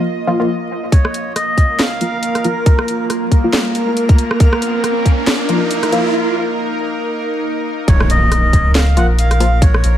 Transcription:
Already playing: synth drone A#3 F4 D#5
0.27 synth stab F3 A#3 F4
0.40 synth stab F3 A#3 F4
0.92 sub bass A#1, synth drone A#3 F4 A#4, synth texture A#4, melodica C#5, kick, closed hi-hat, riser
1.05 cross-stick
1.14 closed hi-hat
1.36 melodica D#5, cross-stick, closed hi-hat
1.57 sub bass C#2, kick, closed hi-hat
1.79 melodica F5, snare, closed hi-hat
2.01 sub bass A#1, synth stab F3 A#3 F4, closed hi-hat
2.23 closed hi-hat
2.35 cross-stick, closed hi-hat
2.44 synth stab F3 A#3 F4, melodica A#4, closed hi-hat
2.66 kick, closed hi-hat
2.79 cross-stick
2.88 sub bass A#1, closed hi-hat
3.10 cross-stick, closed hi-hat
3.31 sub bass C#2, kick, closed hi-hat
3.44 synth stab F3 A#3 F4
3.53 snare, closed hi-hat
3.75 closed hi-hat
3.97 closed hi-hat
4.09 kick, closed hi-hat
4.19 closed hi-hat
4.31 cross-stick
4.40 synth drone D#4, kick, closed hi-hat
4.53 cross-stick
4.62 sub bass A#1, closed hi-hat
4.84 cross-stick, closed hi-hat
5.06 sub bass C#2, kick, closed hi-hat
5.27 snare, closed hi-hat
5.49 synth stab F3 A#3 F4, closed hi-hat
5.71 closed hi-hat
5.83 cross-stick, closed hi-hat
5.92 synth stab F3 A#3 F4, closed hi-hat
7.88 sub bass A#1, synth drone A#2 F4 A#4, melodica C#5, kick, closed hi-hat, impact
8.00 cross-stick
8.10 melodica D#5, closed hi-hat
8.32 cross-stick, closed hi-hat
8.53 sub bass C#2, kick, closed hi-hat
8.75 melodica F5, snare, closed hi-hat
8.97 sub bass A#1, synth stab F3 A#3 F4, melodica F#5, closed hi-hat
9.19 melodica F5, closed hi-hat
9.31 cross-stick, closed hi-hat
9.40 synth stab F3 A#3 F4, open hi-hat
9.62 melodica C#5, kick, closed hi-hat
9.74 cross-stick
9.84 sub bass A#1, closed hi-hat

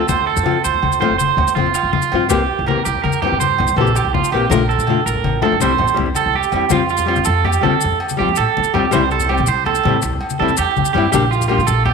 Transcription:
0.08 upright bass D2, clean electric guitar C5, high conga, low conga, low agogo, maracas
0.27 clean electric guitar A4
0.36 upright bass F2, low conga, maracas
0.43 nylon-string guitar F3 C4 F4, high conga, low conga, low agogo
0.64 upright bass D2, clean electric guitar C5, low conga, maracas
0.74 low conga
0.82 upright bass D2, high conga, low conga, low agogo
0.92 maracas
1.00 nylon-string guitar F3 A3 C4 F4, clean electric guitar C5, low conga, low agogo
1.10 upright bass F1
1.18 clean electric guitar C5, high conga, maracas
1.30 low conga
1.37 upright bass D2, low conga, low agogo
1.48 maracas
1.55 upright bass F1, nylon-string guitar F3 C4, clean electric guitar F4, muted nylon-string guitar stroke, high conga, low conga
1.60 nylon-string guitar F4
1.67 low conga
1.75 clean electric guitar F4, low agogo, maracas
1.83 upright bass F1, low conga
1.93 clean electric guitar F4, high conga, low conga
2.02 maracas
2.12 upright bass G2, nylon-string guitar F3 C4 F4, muted nylon-string guitar stroke, low agogo
2.29 upright bass C2, nylon-string guitar E3 A#3 C4 G4, clean electric guitar G4, high conga, low conga, low agogo, maracas
2.59 upright bass C2, low conga
2.66 nylon-string guitar E3 A#3 C4 G4, clean electric guitar A#4, high conga, low conga, low agogo
2.85 upright bass C2, clean electric guitar G4, low conga, maracas
2.95 low conga
3.04 upright bass E2, clean electric guitar A#4, high conga, low conga, low agogo
3.12 maracas
3.22 nylon-string guitar E3 C4, clean electric guitar G4, muted nylon-string guitar stroke, low conga, low agogo
3.27 nylon-string guitar G4
3.32 upright bass G2
3.40 clean electric guitar C5, high conga, maracas
3.51 low conga
3.58 upright bass C2, low conga, low agogo
3.67 maracas
3.76 upright bass A#1, nylon-string guitar E3 A#3 C4, clean electric guitar A4, high conga, low conga
3.81 nylon-string guitar G4
3.87 low conga, maracas
3.95 clean electric guitar G4, low agogo, maracas
4.05 upright bass C2, low conga
4.14 clean electric guitar F4, high conga, low conga
4.24 maracas
4.32 upright bass A#1, nylon-string guitar E3 A#3 C4 G4, clean electric guitar G4, low agogo
4.50 upright bass A#1, nylon-string guitar F3 A3 D4 F4, clean electric guitar A#4, high conga, low conga, low agogo, maracas
4.69 clean electric guitar A4, low conga, maracas
4.78 upright bass A#2, maracas
4.87 nylon-string guitar A3 D4 F4, high conga, low agogo
5.06 upright bass A1, clean electric guitar A#4, low conga, maracas
5.16 low conga
5.24 upright bass A1, high conga, low agogo
5.34 low conga
5.42 nylon-string guitar F3 A3 D4 F4, clean electric guitar A4, low conga, low agogo
5.52 upright bass G2, low conga
5.60 upright bass C2, nylon-string guitar G3 C4 E4, clean electric guitar C5, high conga, maracas
5.78 upright bass A1, low conga, low agogo
5.88 low conga, maracas
5.94 upright bass C2, nylon-string guitar G3 C4 E4, high conga
6.06 low conga
6.15 clean electric guitar A4, high conga, low agogo, maracas
6.26 upright bass C2
6.34 clean electric guitar G4, low conga
6.43 maracas
6.52 upright bass E2, nylon-string guitar G3 C4 E4, low conga, low agogo, maracas
6.69 upright bass F2, nylon-string guitar G3 C4 F4, clean electric guitar F4, high conga, low agogo, maracas
6.89 clean electric guitar F4, low conga, maracas
6.97 low conga, maracas
7.06 nylon-string guitar G3 C4, clean electric guitar F4, low agogo
7.10 nylon-string guitar F4
7.16 upright bass F3, high conga, maracas
7.25 upright bass F2, clean electric guitar A4, maracas
7.45 clean electric guitar G4, low conga, low agogo
7.53 maracas
7.61 upright bass D3, nylon-string guitar G3 C4 F4, clean electric guitar A4, high conga, low conga, low agogo
7.81 upright bass F2, maracas
7.92 low conga
8.00 low agogo
8.09 high conga, maracas
8.17 upright bass F3, nylon-string guitar G3 C4 F4, clean electric guitar G4
8.29 low conga
8.36 upright bass A2, clean electric guitar A4, low conga, low agogo, maracas
8.57 upright bass F2, high conga
8.64 maracas
8.74 upright bass C2, nylon-string guitar G3 C4 F4, clean electric guitar G4, low conga, low agogo
8.91 upright bass C2, nylon-string guitar G3 C4 E4, clean electric guitar C5, high conga, low agogo, maracas
9.11 clean electric guitar A4, maracas
9.20 low conga, maracas
9.29 nylon-string guitar G3 C4, clean electric guitar G4, low agogo
9.37 upright bass C3, high conga, maracas
9.47 upright bass C2, clean electric guitar C5, maracas
9.66 clean electric guitar A4, low conga, low agogo
9.75 maracas
9.84 upright bass A2, nylon-string guitar G3 C4, high conga, low conga, low agogo
9.89 nylon-string guitar E4
10.02 upright bass C2, muted clean electric guitar stroke, maracas
10.13 low conga
10.21 low agogo
10.30 high conga, maracas
10.39 upright bass C3, nylon-string guitar G3 C4 E4, clean electric guitar A4
10.48 low conga, maracas
10.57 upright bass E2, clean electric guitar G4, low conga, low agogo, maracas
10.76 upright bass C2, high conga, maracas
10.85 maracas
10.93 upright bass G2, nylon-string guitar G3 C4, clean electric guitar G4, low conga, low agogo
10.97 nylon-string guitar E4
11.12 upright bass A#1, nylon-string guitar G3 A#3 D4 G4, clean electric guitar G4, high conga, low agogo, maracas
11.31 clean electric guitar F4, low conga, maracas
11.41 low conga, maracas
11.48 nylon-string guitar G3 A#3 D4 G4, clean electric guitar F4, low agogo
11.58 upright bass A#2, high conga, maracas
11.67 upright bass A#1, clean electric guitar A4, maracas
11.86 clean electric guitar G4, low conga, low agogo

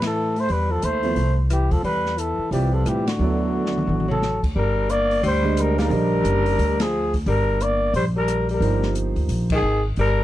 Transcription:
Already playing: upright bass A2
0.02 tenor saxophone E3, snare, ride
0.06 trumpet A4
0.36 tenor saxophone A3, trumpet C5, open hi-hat
0.49 upright bass E2, tenor saxophone G3, trumpet B4, open hi-hat
0.70 tenor saxophone F3, trumpet A4
0.82 upright bass D#2, tenor saxophone A3, trumpet C5, closed hi-hat
1.03 grand piano F3 B3 E4 A4 C5, open hi-hat
1.16 upright bass C2, open hi-hat
1.50 tenor saxophone E3, trumpet G4, cross-stick, closed hi-hat
1.71 upright bass D2, tenor saxophone F3, trumpet A4, kick, open hi-hat
1.83 upright bass E2, tenor saxophone G3, trumpet B4, open hi-hat
2.06 snare
2.17 tenor saxophone E3, trumpet A4, closed hi-hat
2.38 muted upright bass stroke
2.51 upright bass C2, tenor saxophone E3, grand piano G3 C4 F4 B4 D5, trumpet G4, open hi-hat
2.73 tenor saxophone F3, trumpet A4
2.84 upright bass A2, tenor saxophone E3, cross-stick, closed hi-hat
2.88 trumpet G4
3.06 tenor saxophone D3, trumpet F#4, snare, ride
3.19 upright bass D2, grand piano F#3 B3 E4 A4 D5
3.66 snare
3.78 high tom
3.87 upright bass A1, high tom
4.00 high tom
4.08 tenor saxophone F#3, trumpet A4, mid tom
4.22 snare
4.43 upright bass D2, kick, crash
4.55 upright bass G1, tenor saxophone G3, trumpet A#4
4.89 tenor saxophone A#3, trumpet D5, closed hi-hat
5.11 open hi-hat
5.23 upright bass D2, tenor saxophone G3, trumpet C5, open hi-hat
5.43 grand piano D3 G#3 G4 C5 D#5
5.57 tenor saxophone G3, trumpet A#4, cross-stick, closed hi-hat
5.77 tenor saxophone G3, grand piano A#3 D#4 G#4 D5 F5, trumpet A#4, snare, open hi-hat
5.88 upright bass A#1, grand piano D3 G3 G4 C5 D#5, open hi-hat
6.24 upright bass F#1, closed hi-hat
6.46 open hi-hat
6.58 upright bass D2, open hi-hat
6.80 tenor saxophone F3, trumpet G#4, snare, ride
7.14 kick, open hi-hat
7.26 upright bass G1, tenor saxophone G3, trumpet A#4, open hi-hat
7.60 tenor saxophone A#3, trumpet D5, closed hi-hat
7.94 upright bass A#1, tenor saxophone G3, trumpet C5, open hi-hat
8.16 tenor saxophone G3, trumpet A#4
8.28 cross-stick, closed hi-hat
8.49 tenor saxophone G3, open hi-hat
8.53 trumpet A#4
8.60 upright bass G1, grand piano F3 A#3 D#4 G4 C5, open hi-hat
8.83 snare
8.95 closed hi-hat
9.16 upright bass D2, open hi-hat
9.29 upright bass A#1, open hi-hat
9.50 tenor saxophone D#3, kick, crash
9.55 trumpet G#4
9.62 upright bass G#1
9.96 upright bass G1, tenor saxophone G3, trumpet A#4, open hi-hat

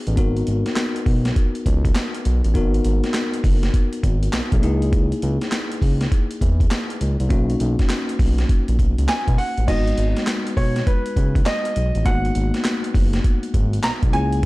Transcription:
Already playing: tine electric piano B3 D#4 F#4 G#4
0.07 analog synth bass A1, closed hi-hat
0.16 analog synth bass G#1, tine electric piano B3 D#4 F#4 A#4, kick, closed hi-hat
0.37 closed hi-hat
0.47 analog synth bass G#1, closed hi-hat
0.66 snare, closed hi-hat
0.76 snare, clap, closed hi-hat
0.96 closed hi-hat
1.06 analog synth bass B1, kick, open hi-hat
1.25 snare, closed hi-hat
1.36 kick, closed hi-hat
1.55 closed hi-hat
1.66 analog synth bass C#2, kick, closed hi-hat
1.85 kick, closed hi-hat
1.95 snare, clap, closed hi-hat
2.14 closed hi-hat
2.25 analog synth bass B1, closed hi-hat
2.44 analog synth bass A1, closed hi-hat
2.54 analog synth bass G#1, tine electric piano B3 D#4 F#4 A#4, kick, closed hi-hat
2.74 closed hi-hat
2.85 analog synth bass G#1, closed hi-hat
3.04 snare, closed hi-hat
3.14 snare, clap, closed hi-hat
3.34 closed hi-hat
3.44 analog synth bass F#1, kick, open hi-hat
3.63 snare, closed hi-hat
3.74 kick, closed hi-hat
3.93 closed hi-hat
4.03 analog synth bass G#1, kick, closed hi-hat
4.23 closed hi-hat
4.33 analog synth bass B1, snare, clap, closed hi-hat
4.52 analog synth bass B1, kick, closed hi-hat
4.62 analog synth bass C#2, tine electric piano A#3 D#4 E4 G#4, closed hi-hat
4.82 closed hi-hat
4.93 kick, closed hi-hat
5.12 closed hi-hat
5.22 analog synth bass C#2, closed hi-hat
5.41 snare, closed hi-hat
5.52 snare, clap, closed hi-hat
5.72 closed hi-hat
5.82 analog synth bass C#2, kick, open hi-hat
6.01 snare, closed hi-hat
6.12 kick, closed hi-hat
6.31 closed hi-hat
6.41 analog synth bass E2, kick, closed hi-hat
6.60 kick, closed hi-hat
6.71 snare, clap, closed hi-hat
6.90 closed hi-hat
7.01 analog synth bass C#2, closed hi-hat
7.20 analog synth bass C2, closed hi-hat
7.29 analog synth bass B1, tine electric piano A#3 C#4 D#4 F#4, kick, closed hi-hat
7.50 closed hi-hat
7.60 analog synth bass B1, closed hi-hat
7.79 kick, snare, closed hi-hat
7.89 snare, clap, closed hi-hat
8.09 closed hi-hat
8.19 analog synth bass B1, kick, open hi-hat
8.38 snare, closed hi-hat
8.49 kick, closed hi-hat
8.68 analog synth bass A#1, closed hi-hat
8.79 analog synth bass B1, kick, closed hi-hat
8.98 analog synth bass C#2, closed hi-hat
9.08 grand piano G#5, snare, clap, closed hi-hat
9.28 analog synth bass B2, kick, closed hi-hat
9.38 grand piano F#5, open hi-hat
9.57 analog synth bass A1, closed hi-hat
9.67 analog synth bass G#1, tine electric piano G#3 B3 D#4 F#4, grand piano D#5, kick, closed hi-hat, crash
9.87 closed hi-hat
9.98 analog synth bass G#1, closed hi-hat
10.17 snare, closed hi-hat
10.27 snare, clap, closed hi-hat
10.47 closed hi-hat
10.57 analog synth bass B1, grand piano C#5, kick, open hi-hat
10.76 snare, closed hi-hat
10.87 grand piano B4, kick, closed hi-hat
11.06 closed hi-hat
11.16 analog synth bass C#2, kick, closed hi-hat
11.35 kick, closed hi-hat
11.46 grand piano D#5, snare, clap, closed hi-hat
11.65 closed hi-hat
11.76 analog synth bass B1, closed hi-hat
11.95 analog synth bass A1, closed hi-hat
12.04 analog synth bass G#1, tine electric piano A#3 B3 D#4 F#4, grand piano F#5, kick, closed hi-hat
12.25 closed hi-hat
12.35 analog synth bass G#1, closed hi-hat
12.54 snare, closed hi-hat
12.64 snare, clap, closed hi-hat
12.84 closed hi-hat
12.94 analog synth bass F#1, kick, open hi-hat
13.13 snare, closed hi-hat
13.24 kick, closed hi-hat
13.43 closed hi-hat
13.54 analog synth bass G#1, kick, closed hi-hat
13.73 closed hi-hat
13.83 analog synth bass B1, grand piano A#5, snare, clap, closed hi-hat
14.03 analog synth bass B1, kick, closed hi-hat
14.12 analog synth bass C#2, tine electric piano A#3 C#4 E4 G#4, grand piano G#5, closed hi-hat
14.33 closed hi-hat

